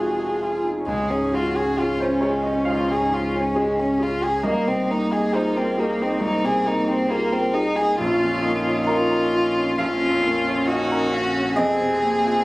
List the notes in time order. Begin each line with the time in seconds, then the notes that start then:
Already playing: F1 F2 C3 G#3 D#4 F4 F#4 G#4 C5
0.19 G#4
0.41 F4
0.64 D#4
0.87 C#2 G#3 C#4 G#4
1.09 G#2 C#4
1.31 G#3 F4 F#4
1.54 C#4 G#4
1.76 F4 G#4
2.00 C#4 C5
2.21 G#3 G#4 C#5
2.43 C#4 D#5
2.47 C#4
2.65 C#2 D#4 F5
2.69 F4
2.88 G#2 G#4
3.11 G#3 C#4 F4
3.32 C#4
3.55 G#3 G#4
3.77 C#4
3.99 G#4
4.03 F4
4.22 C#4 G#4
4.43 C2 A#3 D#4 D#5
4.66 C3 C4
4.89 A#3 D#4
5.12 D#4 G#4
5.33 D#4 F4 G#4 C5
5.55 C4 A#4
5.77 A#3 D#4 G#4
6.01 C4 D#4
6.20 C2 C4 D#4
6.43 C3 G#4
6.64 A#3 D#4
6.88 C4 D#4
7.10 A#3 F4 G#4
7.32 C4 A#4
7.53 D#4 G#4
7.76 D#4 G#4
7.97 A#1 C#4 F4
8.22 F2
8.42 A#3 D#4
8.66 C#4
8.87 C#4 F4 A#4
9.10 A#4
9.33 F4
9.56 C#4
9.78 A#1 C#4 F4 F5
10.02 F2
10.23 A#3 F4
10.47 C#4
10.68 D#4 F#4 F5
10.92 A#4
11.12 C#4 F5
11.35 C#4
11.56 F1 F2 C4 G#4 D#5
11.80 C3
12.02 A#3 C4
12.25 F4